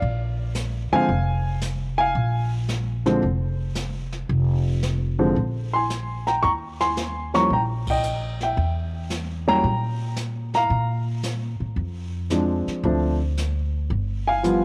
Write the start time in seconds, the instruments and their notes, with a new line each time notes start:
Already playing: grand piano D5 F5
0.02 upright bass A#1, brush sweep
0.55 snare, hi-hat pedal
0.92 grand piano D3 F3 G#3 C4 F5 G#5, muted upright bass stroke
1.08 upright bass F1, brush sweep
1.61 snare, hi-hat pedal
1.98 grand piano F5 G#5
2.15 upright bass A#1, brush sweep
2.68 snare, hi-hat pedal
3.06 grand piano D3 F3 G#3 C4, snare
3.22 upright bass F1, brush sweep
3.75 snare, hi-hat pedal
4.12 snare
4.29 upright bass F1, brush sweep
4.82 snare, hi-hat pedal
5.19 grand piano D3 F3 G#3 C4
5.36 upright bass A#1, brush sweep
5.73 grand piano G#5 C6
5.90 snare, hi-hat pedal
6.27 grand piano G5 A#5, snare
6.43 upright bass D#2, grand piano A#5 C#6, brush sweep
6.81 grand piano G#5 C6, snare
6.97 snare, hi-hat pedal
7.34 grand piano F3 G3 A#3 C#4 A#5 C#6, snare
7.50 upright bass A#1, grand piano G5 A#5, brush sweep
7.87 grand piano D#5 G5, kick, ride
8.03 hi-hat pedal
8.41 grand piano E5 G5, snare
8.57 upright bass E2, brush sweep
9.10 snare, hi-hat pedal
9.48 grand piano F#3 G3 A#3 C#4 G5 A#5
9.63 upright bass A#2, brush sweep
10.16 snare, hi-hat pedal
10.54 grand piano F5 A#5, snare
10.70 upright bass A#2, brush sweep
11.23 snare, hi-hat pedal
11.60 upright bass A2
11.76 upright bass F2, brush sweep
12.30 grand piano F3 G#3 C4 D4, snare, hi-hat pedal
12.67 muted upright bass stroke, snare
12.83 upright bass D2, grand piano F3 A3 C4 D4, brush sweep
13.37 snare, hi-hat pedal
13.90 upright bass G1, brush sweep
14.28 grand piano F5 G#5
14.43 grand piano F3 G3 B3 F4, hi-hat pedal